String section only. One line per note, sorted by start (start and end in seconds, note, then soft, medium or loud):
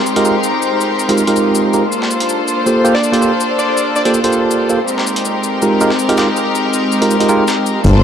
0.00 1.90 G#3 medium
0.00 1.90 C4 medium
0.00 1.90 D#4 medium
0.00 1.90 G4 medium
0.00 1.90 A#4 medium
1.92 4.86 A#3 medium
1.92 4.86 D4 medium
1.92 4.86 F4 medium
1.92 4.86 A4 medium
1.92 4.86 C5 medium
4.88 7.82 G#3 medium
4.88 7.82 C4 medium
4.88 7.82 D#4 medium
4.88 7.82 G4 medium
4.88 7.82 A#4 medium
7.84 8.04 A#3 loud
7.84 8.04 D4 medium
7.84 8.04 F4 medium
7.84 8.04 A4 medium
7.84 8.04 C5 loud